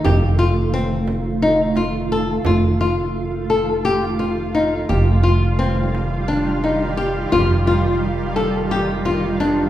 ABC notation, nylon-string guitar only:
X:1
M:7/8
L:1/8
Q:1/4=87
K:Fmix
V:1 name="Nylon-string guitar"
G F C2 E F A | F F2 A G F E | G F C2 D E G | F F2 A G F D |]